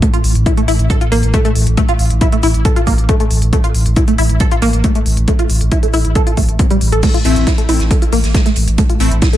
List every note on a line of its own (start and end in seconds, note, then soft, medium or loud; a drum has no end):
0.00 7.02 A2 medium
0.00 0.06 A3 loud
0.00 kick loud
0.00 closed hi-hat medium
0.14 0.17 F4 medium
0.14 closed hi-hat soft
0.24 0.35 A1 loud
0.24 open hi-hat loud
0.35 0.46 A1 medium
0.35 closed hi-hat soft
0.46 0.53 E4 medium
0.46 kick loud
0.46 closed hi-hat medium
0.57 0.61 A3 medium
0.57 closed hi-hat soft
0.68 0.79 A1 loud
0.68 0.72 E4 loud
0.68 open hi-hat loud
0.79 0.90 A1 medium
0.79 closed hi-hat soft
0.90 0.96 A4 medium
0.90 kick loud
0.90 closed hi-hat medium
1.01 1.05 F4 medium
1.01 closed hi-hat soft
1.12 1.22 A1 loud
1.12 1.18 A#3 loud
1.12 open hi-hat loud
1.23 1.34 A1 medium
1.23 closed hi-hat soft
1.34 1.40 A3 loud
1.34 kick loud
1.34 closed hi-hat medium
1.45 1.49 A3 medium
1.45 closed hi-hat soft
1.55 1.66 A1 loud
1.55 open hi-hat loud
1.67 1.77 A1 medium
1.67 closed hi-hat medium
1.77 1.81 A3 loud
1.77 kick loud
1.77 closed hi-hat medium
1.89 1.92 F4 medium
1.89 closed hi-hat soft
1.99 2.10 A1 loud
1.99 open hi-hat loud
2.10 2.21 A1 medium
2.10 closed hi-hat soft
2.21 2.28 E4 medium
2.21 kick loud
2.21 closed hi-hat medium
2.32 2.36 A3 medium
2.32 closed hi-hat soft
2.43 2.54 A1 medium
2.43 2.47 E4 loud
2.43 open hi-hat loud
2.54 2.65 A1 medium
2.54 closed hi-hat soft
2.65 2.72 A4 medium
2.65 kick loud
2.65 closed hi-hat medium
2.76 2.80 F4 medium
2.76 closed hi-hat medium
2.87 2.97 A1 medium
2.87 2.93 A#3 loud
2.87 kick medium
2.87 open hi-hat loud
2.98 3.09 A1 medium
2.98 closed hi-hat soft
3.09 3.15 A3 loud
3.09 kick loud
3.09 closed hi-hat medium
3.20 3.24 A3 medium
3.20 closed hi-hat medium
3.31 3.41 A1 loud
3.31 open hi-hat loud
3.42 3.52 A1 medium
3.42 closed hi-hat medium
3.53 3.57 A3 loud
3.53 kick loud
3.53 closed hi-hat medium
3.64 3.68 F4 medium
3.64 closed hi-hat soft
3.75 3.85 A1 loud
3.75 open hi-hat loud
3.86 3.96 A1 medium
3.86 closed hi-hat medium
3.96 4.03 E4 medium
3.96 kick loud
3.96 closed hi-hat medium
4.08 4.11 A3 medium
4.08 closed hi-hat medium
4.18 4.29 A1 medium
4.18 4.22 E4 loud
4.18 open hi-hat loud
4.30 4.40 A1 medium
4.30 closed hi-hat soft
4.40 4.47 A4 medium
4.40 kick loud
4.40 closed hi-hat medium
4.51 4.55 F4 medium
4.51 closed hi-hat medium
4.62 4.73 A1 medium
4.62 4.69 A#3 loud
4.62 open hi-hat loud
4.73 4.84 A1 medium
4.73 closed hi-hat medium
4.84 4.91 A3 loud
4.84 kick loud
4.84 closed hi-hat medium
4.95 4.99 A3 medium
4.95 closed hi-hat medium
5.06 5.17 A1 loud
5.06 open hi-hat loud
5.17 5.28 A1 medium
5.17 closed hi-hat medium
5.28 5.32 A3 loud
5.28 kick loud
5.28 closed hi-hat medium
5.39 5.43 F4 medium
5.39 closed hi-hat medium
5.50 5.60 A1 loud
5.50 open hi-hat medium
5.61 5.71 A1 medium
5.61 closed hi-hat medium
5.72 5.78 E4 medium
5.72 kick loud
5.72 closed hi-hat medium
5.83 5.87 A3 medium
5.83 closed hi-hat medium
5.93 6.04 A1 medium
5.93 5.97 E4 loud
5.93 open hi-hat loud
6.05 6.15 A1 medium
6.05 closed hi-hat medium
6.15 6.22 A4 medium
6.15 kick loud
6.15 closed hi-hat medium
6.27 6.30 F4 medium
6.27 closed hi-hat medium
6.37 6.48 A1 loud
6.37 6.41 A3 medium
6.37 kick medium
6.37 open hi-hat loud
6.49 6.59 A1 medium
6.49 closed hi-hat medium
6.59 6.66 C4 medium
6.59 kick loud
6.59 closed hi-hat medium
6.71 6.77 G3 loud
6.71 closed hi-hat medium
6.81 6.92 A1 medium
6.81 open hi-hat loud
6.92 7.03 A1 medium
6.92 7.02 A4 medium
6.92 closed hi-hat medium
7.03 9.37 A2 medium
7.03 7.07 A3 loud
7.03 kick loud
7.03 closed hi-hat medium
7.03 crash medium
7.14 7.18 F4 medium
7.14 closed hi-hat medium
7.25 7.36 A1 loud
7.25 7.45 A3 loud
7.25 7.45 C4 medium
7.25 7.45 E4 loud
7.25 closed hi-hat medium
7.25 open hi-hat loud
7.36 7.47 A1 medium
7.36 closed hi-hat medium
7.47 7.53 E4 medium
7.47 kick loud
7.47 snare loud
7.47 closed hi-hat loud
7.47 closed hi-hat medium
7.58 7.62 A3 medium
7.58 closed hi-hat medium
7.69 7.79 A1 medium
7.69 7.89 A3 medium
7.69 7.89 C4 medium
7.69 7.73 E4 loud
7.69 7.89 E4 medium
7.69 closed hi-hat medium
7.69 open hi-hat loud
7.80 7.90 A1 medium
7.80 snare soft
7.80 closed hi-hat medium
7.91 7.97 A4 medium
7.91 kick loud
7.91 closed hi-hat medium
8.02 8.06 F4 medium
8.02 closed hi-hat medium
8.12 8.23 A1 loud
8.12 8.19 A#3 loud
8.12 open hi-hat medium
8.12 open hi-hat loud
8.23 8.34 A1 medium
8.23 snare medium
8.23 closed hi-hat medium
8.34 8.41 A3 loud
8.34 kick loud
8.34 snare loud
8.34 closed hi-hat medium
8.46 8.50 A3 medium
8.46 snare soft
8.46 closed hi-hat medium
8.56 8.67 A1 loud
8.56 closed hi-hat medium
8.56 open hi-hat loud
8.67 8.78 A1 medium
8.67 closed hi-hat soft
8.67 closed hi-hat medium
8.78 8.82 A3 loud
8.78 kick loud
8.78 closed hi-hat medium
8.78 closed hi-hat loud
8.90 8.93 F4 medium
8.90 closed hi-hat medium
9.00 9.11 A1 loud
9.00 9.13 A3 loud
9.00 9.13 C4 medium
9.00 9.13 E4 loud
9.00 closed hi-hat medium
9.00 open hi-hat loud
9.11 9.22 A1 medium
9.11 closed hi-hat medium
9.22 9.29 E4 medium
9.22 kick loud
9.22 snare loud
9.22 closed hi-hat medium
9.22 closed hi-hat loud
9.33 9.37 A3 medium
9.33 snare soft
9.33 closed hi-hat medium